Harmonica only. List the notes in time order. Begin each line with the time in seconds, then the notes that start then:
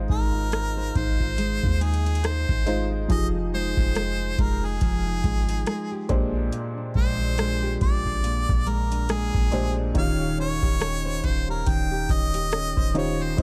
0.11 A#4
0.97 C5
1.82 G#4
2.25 C5
3.11 D#5
3.55 C5
4.41 A#4
4.65 G#4
6.97 C5
7.83 D5
8.69 A#4
9.12 G#4
9.98 F5
10.40 C#5
11.26 C5
11.51 A#4
11.69 G5
12.12 D#5
12.98 C#5
13.23 C5